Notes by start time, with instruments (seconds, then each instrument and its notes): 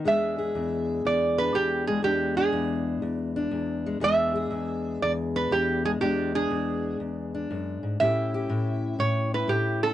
0.05 steel-string acoustic guitar E2 G#3 D4 G#4, resonator guitar played with a steel bar E5
0.38 steel-string acoustic guitar G#4
0.55 steel-string acoustic guitar E2
1.05 steel-string acoustic guitar E2, resonator guitar played with a steel bar D5
1.38 steel-string acoustic guitar D4, resonator guitar played with a steel bar B4
1.54 steel-string acoustic guitar E2, resonator guitar played with a steel bar G4
1.87 steel-string acoustic guitar G#3, resonator guitar played with a steel bar G#4
2.03 steel-string acoustic guitar E2 G#3 D4, resonator guitar played with a steel bar G4
2.37 steel-string acoustic guitar D4, resonator guitar played with a steel bar G#4
2.53 steel-string acoustic guitar E2
3.02 steel-string acoustic guitar E2
3.36 steel-string acoustic guitar D4
3.51 steel-string acoustic guitar E2
3.86 steel-string acoustic guitar G#3
4.00 steel-string acoustic guitar E2 G#3 D4 G#4, resonator guitar played with a steel bar E5
4.36 steel-string acoustic guitar G#4
4.51 steel-string acoustic guitar E2
5.02 steel-string acoustic guitar E2, resonator guitar played with a steel bar D5
5.36 steel-string acoustic guitar D4, resonator guitar played with a steel bar B4
5.51 steel-string acoustic guitar E2, resonator guitar played with a steel bar G4
5.85 steel-string acoustic guitar G#3, resonator guitar played with a steel bar G#4
6.01 steel-string acoustic guitar E2 G#3 D4, resonator guitar played with a steel bar G4
6.35 steel-string acoustic guitar D4, resonator guitar played with a steel bar G#4
6.51 steel-string acoustic guitar E2
7.00 steel-string acoustic guitar E2
7.35 steel-string acoustic guitar D4
7.51 steel-string acoustic guitar F#2
7.83 steel-string acoustic guitar G#2
8.00 steel-string acoustic guitar A2 C#4 E4 G4, resonator guitar played with a steel bar E5
8.34 steel-string acoustic guitar G4
8.50 steel-string acoustic guitar A2
8.99 steel-string acoustic guitar A2, resonator guitar played with a steel bar C#5
9.34 steel-string acoustic guitar E4, resonator guitar played with a steel bar B4
9.48 steel-string acoustic guitar A2, resonator guitar played with a steel bar G4
9.83 steel-string acoustic guitar C#4, resonator guitar played with a steel bar A4